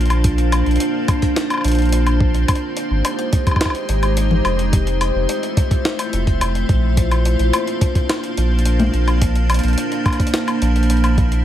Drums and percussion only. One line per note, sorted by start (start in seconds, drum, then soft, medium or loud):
0.01 closed hi-hat soft
0.05 closed hi-hat soft
0.10 closed hi-hat soft
0.10 high woodblock medium
0.24 kick loud
0.24 closed hi-hat medium
0.38 closed hi-hat soft
0.52 closed hi-hat medium
0.52 high woodblock medium
0.66 closed hi-hat soft
0.71 closed hi-hat soft
0.76 closed hi-hat soft
0.80 closed hi-hat medium
1.08 kick loud
1.08 closed hi-hat medium
1.08 high woodblock soft
1.22 kick medium
1.22 closed hi-hat soft
1.36 snare loud
1.36 closed hi-hat medium
1.50 closed hi-hat soft
1.50 high woodblock medium
1.54 high woodblock medium
1.57 high woodblock soft
1.61 closed hi-hat medium
1.61 high woodblock soft
1.68 closed hi-hat medium
1.72 closed hi-hat soft
1.75 closed hi-hat soft
1.79 closed hi-hat soft
1.82 closed hi-hat soft
1.85 closed hi-hat soft
1.89 closed hi-hat soft
1.93 closed hi-hat loud
2.07 closed hi-hat soft
2.07 high woodblock medium
2.21 kick loud
2.34 closed hi-hat soft
2.48 kick loud
2.48 closed hi-hat medium
2.48 high woodblock medium
2.55 closed hi-hat soft
2.77 closed hi-hat medium
3.05 closed hi-hat loud
3.05 high woodblock medium
3.19 closed hi-hat soft
3.33 kick loud
3.33 closed hi-hat medium
3.47 kick medium
3.47 closed hi-hat soft
3.47 high woodblock soft
3.51 high woodblock soft
3.56 kick medium
3.56 high woodblock soft
3.61 snare loud
3.61 closed hi-hat medium
3.61 high woodblock medium
3.65 kick medium
3.65 high woodblock medium
3.70 high woodblock medium
3.75 closed hi-hat soft
3.89 closed hi-hat medium
4.03 closed hi-hat soft
4.03 high woodblock medium
4.17 closed hi-hat medium
4.31 low conga medium
4.45 closed hi-hat soft
4.45 high woodblock medium
4.59 closed hi-hat soft
4.73 kick loud
4.73 closed hi-hat medium
4.87 closed hi-hat soft
5.01 closed hi-hat medium
5.01 high woodblock soft
5.29 closed hi-hat medium
5.43 closed hi-hat soft
5.57 kick loud
5.57 closed hi-hat medium
5.71 kick medium
5.71 closed hi-hat soft
5.85 snare loud
5.99 closed hi-hat medium
5.99 high woodblock soft
6.13 closed hi-hat medium
6.27 kick medium
6.27 closed hi-hat soft
6.41 closed hi-hat medium
6.41 high woodblock medium
6.55 closed hi-hat soft
6.69 kick loud
6.69 closed hi-hat soft
6.97 kick loud
6.97 closed hi-hat medium
7.11 closed hi-hat soft
7.11 high woodblock soft
7.25 closed hi-hat medium
7.39 closed hi-hat soft
7.53 closed hi-hat medium
7.53 high woodblock medium
7.67 closed hi-hat soft
7.81 kick loud
7.81 closed hi-hat medium
7.95 kick medium
7.95 closed hi-hat soft
8.09 snare loud
8.09 closed hi-hat medium
8.09 high woodblock medium
8.24 closed hi-hat soft
8.37 closed hi-hat medium
8.59 closed hi-hat soft
8.65 closed hi-hat medium
8.80 closed hi-hat soft
8.80 low conga medium
8.82 low conga medium
8.84 low conga medium
8.86 low conga soft
8.89 low conga soft
8.91 closed hi-hat soft
8.91 low conga soft
9.08 closed hi-hat soft
9.08 high woodblock medium
9.22 kick loud
9.22 closed hi-hat medium
9.36 closed hi-hat soft
9.50 closed hi-hat medium
9.50 high woodblock medium
9.54 closed hi-hat soft
9.59 closed hi-hat soft
9.64 closed hi-hat soft
9.68 closed hi-hat soft
9.73 closed hi-hat soft
9.78 closed hi-hat medium
9.92 closed hi-hat soft
10.06 kick loud
10.06 closed hi-hat soft
10.06 high woodblock soft
10.08 high woodblock soft
10.10 closed hi-hat soft
10.10 high woodblock soft
10.13 high woodblock soft
10.15 high woodblock soft
10.18 kick medium
10.18 closed hi-hat soft
10.18 high woodblock soft
10.27 closed hi-hat medium
10.34 snare loud
10.34 closed hi-hat medium
10.48 closed hi-hat soft
10.48 high woodblock medium
10.62 closed hi-hat medium
10.76 closed hi-hat soft
10.83 closed hi-hat soft
10.90 closed hi-hat medium
10.97 closed hi-hat soft
11.04 closed hi-hat soft
11.04 high woodblock soft
11.18 kick loud
11.18 closed hi-hat soft
11.32 closed hi-hat soft